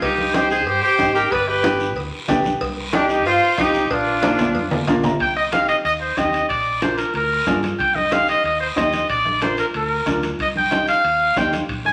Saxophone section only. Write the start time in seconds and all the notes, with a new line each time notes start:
0.03 D#4
0.35 G4
0.51 G#4
0.67 G4
0.83 G4
1.15 G4
1.31 B4
1.48 G4
2.95 D4
3.11 D#4
3.27 F4
3.58 D#4
3.91 D4